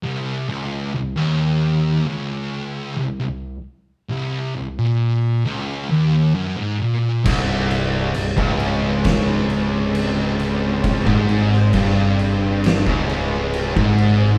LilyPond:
<<
  \new Staff \with { instrumentName = "String machine" } { \time 4/4 \key c \phrygian \tempo 4 = 67 r1 | r1 | <c' g' c''>1~ | <c' g' c''>1 | }
  \new Staff \with { instrumentName = "Distorted electric guitar" } { \clef bass \time 4/4 \key c \phrygian c,8 des,8 c,16 ees,4 des,4 c,16 c,8 | r8 c,8 c,16 bes,8. des,8 ees,8 fis,16 aes,16 bes,8 | c,4 c,16 des,2~ des,8.~ | des,16 aes,8. g,4~ g,16 des,4 aes,8. | }
  \new Staff \with { instrumentName = "Distorted electric guitar" } { \clef bass \time 4/4 \key c \phrygian c,8 des,8 c,16 ees,4 des,4 c,16 c,8 | r8 c,8 c,16 bes,8. des,8 ees,8 fis,16 aes,16 bes,8 | c,4 c,16 des,2~ des,8.~ | des,16 aes,8. g,4~ g,16 des,4 aes,8. | }
  \new Staff \with { instrumentName = "Distorted electric guitar" } { \clef bass \time 4/4 \key c \phrygian r1 | r1 | c,4 c,16 des,2~ des,8.~ | des,16 aes,8. g,4~ g,16 des,4 aes,8. | }
  \new Staff \with { instrumentName = "Picked electric bass" } { \clef bass \time 4/4 \key c \phrygian r1 | r1 | c,,4 c,,16 des,,2~ des,,8.~ | des,,16 aes,,8. g,,4~ g,,16 des,,4 aes,,8. | }
  \new DrumStaff \with { instrumentName = "Drums" } \drummode { \time 4/4 r4 r4 r4 r4 | r4 r4 r4 r4 | <cymc bd>8 cymc8 cymc16 bd16 cymc8 <cymc bd sn>8 cymc8 cymc8 cymc8 | <cymc bd>16 bd16 cymc16 sn16 <cymc bd>8 cymc8 <cymc sn>16 bd16 cymc8 cymc16 bd16 cymc8 | }
>>